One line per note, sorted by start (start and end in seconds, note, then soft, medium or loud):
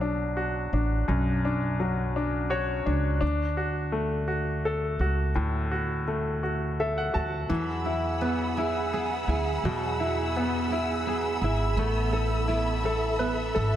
0.00 0.69 B1 medium
0.00 1.04 B2 soft
0.00 1.04 F#3 soft
0.00 0.73 D4 soft
0.37 1.75 F#4 soft
0.73 1.06 A1 medium
0.73 1.43 D4 soft
1.08 2.82 B1 medium
1.08 3.18 F#2 medium
1.45 2.15 D4 soft
1.80 3.18 F#3 soft
2.16 2.84 D4 soft
2.50 3.19 F#4 soft
2.50 3.18 C#5 medium
2.86 3.20 C#2 medium
2.86 3.19 D4 soft
3.21 4.96 D2 medium
3.21 5.31 D4 medium
3.57 4.26 F#4 soft
3.92 5.31 A3 soft
4.28 4.99 F#4 soft
4.65 6.03 A4 soft
4.99 5.33 C#2 medium
4.99 5.70 F#4 soft
5.35 7.10 D2 medium
5.35 7.46 A2 medium
5.71 6.42 F#4 soft
6.08 7.46 A3 soft
6.43 7.12 F#4 soft
6.80 7.48 A4 soft
6.80 6.96 E5 soft
6.98 7.14 F#5 soft
7.14 7.48 D2 medium
7.14 7.48 F#4 soft
7.14 7.47 A5 soft
7.49 9.24 E2 medium
7.49 9.60 E3 medium
7.49 9.64 F#3 medium
7.49 11.74 G#4 medium
7.49 11.74 F#5 medium
7.49 13.76 B5 medium
7.49 13.76 E6 medium
7.85 10.00 E4 soft
7.85 8.57 E4 soft
8.21 8.93 B3 soft
8.21 9.60 B3 soft
8.57 9.27 E4 soft
8.57 9.28 G#4 medium
8.93 10.35 B3 soft
8.93 10.31 G#4 soft
9.28 9.62 D2 medium
9.28 9.98 E4 soft
9.28 10.69 G#4 soft
9.64 11.37 E2 medium
9.64 11.73 B2 medium
9.64 11.77 F#3 medium
10.00 10.71 E4 soft
10.00 12.12 E4 soft
10.36 11.06 B3 soft
10.36 11.73 B3 soft
10.70 11.43 E4 soft
10.70 11.41 G#4 medium
11.06 11.77 B3 soft
11.06 11.76 G#4 soft
11.42 11.75 G#1 medium
11.42 11.77 E4 soft
11.42 11.84 G#4 medium
11.77 13.50 A1 medium
11.77 13.76 A3 medium
11.77 12.48 B3 medium
11.77 13.76 A4 medium
11.77 13.76 E5 medium
12.12 13.76 E4 soft
12.12 12.84 A4 soft
12.48 13.19 B3 soft
12.48 13.76 E4 soft
12.84 13.55 A4 medium
12.84 13.53 A4 soft
13.19 13.76 B3 soft
13.19 13.76 B4 soft
13.55 13.76 G#1 medium
13.55 13.76 A4 soft
13.55 13.76 A4 medium